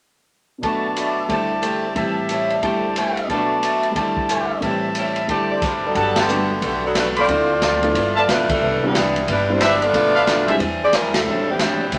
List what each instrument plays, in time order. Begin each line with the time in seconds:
0.58 upright piano B2 F#3
0.63 steel-string acoustic guitar B2 A3 D4 F#4, upright piano A3 D4, trumpet section F#4 B4 D5 A5, kick, ride
0.69 upright piano B4
0.96 steel-string acoustic guitar B2 A3 D4 F#4, upright piano D5, trumpet section B5, hi-hat pedal, ride
1.06 upright piano E5, trumpet section D6
1.15 upright piano F#5
1.19 trumpet section E6
1.23 upright piano A5
1.29 upright piano D2 D3 G3 E4, steel-string acoustic guitar D3 A3 C4 G4, trumpet section G4 C5 D5 A5, kick, ride
1.34 upright piano C5
1.62 steel-string acoustic guitar D3 A3 C4 G4, hi-hat pedal, ride
1.95 upright piano A2 E3 G3 C4, steel-string acoustic guitar A2 G3 C4 E4, trumpet section G4 E5 A5, kick, ride
2.00 upright piano B4
2.29 steel-string acoustic guitar A2 G3 C4 E4, upright piano C5, hi-hat pedal, ride
2.48 upright piano D5, ride
2.62 upright piano D2 D3 G3 E4 C5, steel-string acoustic guitar D3 A3 C4 G4, trumpet section G4 C5 D5 A5, kick, ride
2.96 steel-string acoustic guitar D3 A3 C4 G4, hi-hat pedal, ride
3.17 ride
3.27 upright piano B2 F#3 A3 D4, steel-string acoustic guitar B2 A3, trumpet section F#4 B4 D5 A5, kick, ride
3.31 steel-string acoustic guitar D4 F#4, upright piano B4
3.63 steel-string acoustic guitar B2 A3 D4 F#4, hi-hat pedal, ride
3.83 ride
3.91 upright piano D2 D3, trumpet section G4 C5 D5 A5
3.96 steel-string acoustic guitar D3 A3 C4 G4, upright piano G3, kick, ride
4.00 upright piano E4 C5
4.17 kick
4.28 steel-string acoustic guitar D3 A3 C4 G4, trumpet section C6, hi-hat pedal, ride
4.40 trumpet section D6
4.51 trumpet section E6
4.61 upright piano A2 E3 G3, steel-string acoustic guitar A2 G3, trumpet section G4 E5 A5, kick, ride
4.65 steel-string acoustic guitar C4 E4, upright piano C4 B4
4.95 steel-string acoustic guitar A2 G3 C4 E4, hi-hat pedal, ride
5.16 ride
5.27 upright piano D2 D3 G3 E4, steel-string acoustic guitar D3 A3 C4 G4, trumpet section G4 C5 D5 A5, kick, ride
5.32 upright piano C5
5.51 saxophone section C4 G4 A4 D5
5.62 saxophone section G3 C4 E4 B4, kick, hi-hat pedal, crash, ride
5.85 saxophone section F#3 B3 D4 A4
5.95 upright bass G1, steel-string acoustic guitar G3 B3 F#4 A4, trumpet section G4 B4 F#5 A5, kick, ride
6.16 saxophone section D3 A3 B3 G4, snare, ride
6.28 steel-string acoustic guitar G3 B3 F#4 A4, upright piano G3 A3 B3 D4 F#4, hi-hat pedal
6.61 upright bass B1, saxophone section D3 A3 B3 G4, steel-string acoustic guitar G3 B3 F#4 A4, kick, ride
6.85 saxophone section F#3 B3 D4 A4
6.95 steel-string acoustic guitar G3 B3 F#4 A4, saxophone section A3 D4 F#4 B4, snare, hi-hat pedal, ride
7.16 saxophone section C4 F4 A4 D5, trumpet section F4 C5 D5 B5, ride
7.28 upright bass D2, steel-string acoustic guitar D3 A3 C4 F4, upright piano F3 A3 C4 D4 E4, kick, ride
7.62 steel-string acoustic guitar D3 A3 C4 F4, snare, hi-hat pedal, ride
7.82 upright piano F3 A3 B3 D4 E4, ride
7.94 upright bass G1, steel-string acoustic guitar G2 F3 B3 E4, kick, ride
8.16 saxophone section B3 F4 A4 D5, trumpet section F4 B4 E5 A5
8.28 upright bass B1, steel-string acoustic guitar G2 F3 B3 E4, saxophone section A3 D4 F4 B4, snare, hi-hat pedal, ride
8.49 saxophone section G3 D4 E4 A4, kick, ride
8.60 upright bass C2, steel-string acoustic guitar C3 E3 B3 D4
8.81 saxophone section E3 B3 D4 G4, upright piano G3 B3 C4 D4 E4
8.95 steel-string acoustic guitar C3 E3 B3 D4, snare, hi-hat pedal, ride
9.16 ride
9.27 upright bass G1, steel-string acoustic guitar C3 E3 B3 D4, saxophone section G3 D4 E4 B4, kick, ride
9.48 upright piano G3 B3 C4 D4 E4, saxophone section G3 D4 E4 C5
9.60 steel-string acoustic guitar C3 E3 B3 D4, trumpet section D4 B4 C5 E5, saxophone section D4 G4 B4 E5, snare, hi-hat pedal, ride
9.82 saxophone section B3 F4 A4 D5, ride
9.93 upright bass B1, steel-string acoustic guitar B2 F3 A3 D4, upright piano F3 A3 B3 D4 F4, kick, ride
10.15 trumpet section D4 A4 B4 F5
10.26 steel-string acoustic guitar B2 F3 A3 D4, snare, hi-hat pedal, ride
10.47 upright piano G3 G#3 C4 D4 E4, trumpet section D4 G#4 C5 E5, ride
10.59 upright bass E2, steel-string acoustic guitar E3 C4 D4 G#4, kick, ride
10.83 saxophone section C4 G4 G#4 D5
10.93 steel-string acoustic guitar E3 C4 D4 G#4, saxophone section G3 C4 E4 A#4, snare, hi-hat pedal, ride
11.14 saxophone section G3 C4 E4 A4, snare, ride
11.25 upright bass A1, steel-string acoustic guitar A2 G3 C4 D4
11.49 saxophone section E3 B3 C4 G4
11.59 steel-string acoustic guitar A2 G3 C4 D4, snare, hi-hat pedal, ride
11.92 upright bass C2, steel-string acoustic guitar A2 G3 C4 D4, saxophone section E3 B3 C4 G4, kick, ride